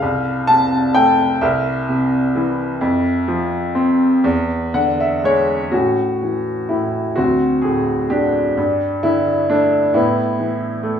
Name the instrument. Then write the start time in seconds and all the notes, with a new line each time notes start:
grand piano
Already playing: A4 F5
0.02 C2
0.47 C3 A5
0.95 A3 G5
1.41 C2 A#4 E5
1.89 C3
2.36 E3
2.81 F2
3.28 F3
3.75 C4
4.24 E2
4.74 D3 F#5
5.00 E5
5.24 G#3 C#5
5.71 A2 C#4 F#4
6.22 E3
6.69 A2 E4
7.16 D2 C4 F#4
7.61 A2 G#4
8.10 D3 D4 G4
8.57 G2
9.03 D3 E4
9.50 A3 D4
9.94 A2 B3 E4
10.39 E3
10.83 A3